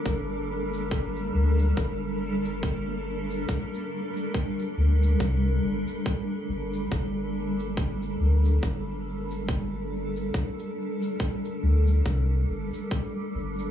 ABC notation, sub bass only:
X:1
M:4/4
L:1/8
Q:"Swing 16ths" 1/4=70
K:Gm
V:1 name="Sub bass" clef=bass
G,,,3 D,, G,,,4 | z3 D,, C,, G,,, z G,,, | G,,,3 D,, G,,,4 | z3 D,, C,, G,,, z G,,, |]